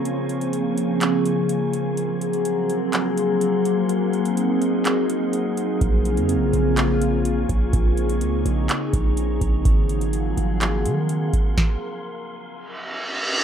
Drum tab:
HH |x-xxx-x-x-x-x-x-|x-xxx-x-x-x-x-x-|x-xxx-x-x-x-x-x-|x-xxx-x-x-x-x-x-|
CP |--------x-------|--------x-------|--------x-------|--------x-------|
SD |----------------|----------------|----------------|----------------|
BD |----------------|----------------|----------------|o-------------o-|

HH |x-xxx-x-x-x-x-x-|x-xxx-x-x-x-x-x-|----------------|
CP |--------x-------|--------x-------|----------------|
SD |----------------|----------------|o---------------|
BD |o---------o---o-|o-------------o-|o---------------|